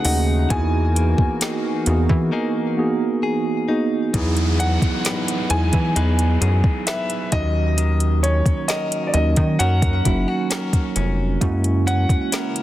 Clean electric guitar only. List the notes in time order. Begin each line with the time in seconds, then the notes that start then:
Already playing: B2 A3 G#4
0.05 D#4
0.50 E3
0.96 A#3
1.41 A#3 D#4 G#4
2.32 A#3 D#4 G#4
3.23 G#4
3.68 D#4
4.14 E3
4.59 D#4
5.05 D#4 G#4 B4
5.96 D#4 G#4 B4
6.41 G#4
6.87 G#4 B4
7.32 D#3
7.78 D#3
8.23 C#4
8.69 C#4 F#4 A#4
9.59 C#4 F#4 A#4
10.05 E4
10.28 F#4
10.50 C#4 F#4 A#4
10.96 C#4
11.87 C#4
12.32 C#4 E4 A#4